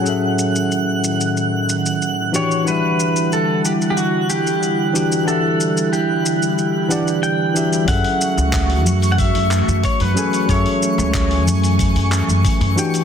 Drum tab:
HH |----------------|----------------|----------------|oo--oo-ooo--oo-o|
SH |x-xxx-xxx-xxx-xx|x-xxx-xxx-xxx-xx|x-xxx-xxx-xxx-xx|x-xxx-xxx-xxx-xx|
CP |----------------|----------------|----------------|----x-----x-----|
BD |----------------|----------------|----------------|o---o---o---o---|

HH |oo--oo-ooo--oo-o|
SH |x-xxx-xxx-xxx-xx|
CP |----x-----x-----|
BD |o---o---o---o---|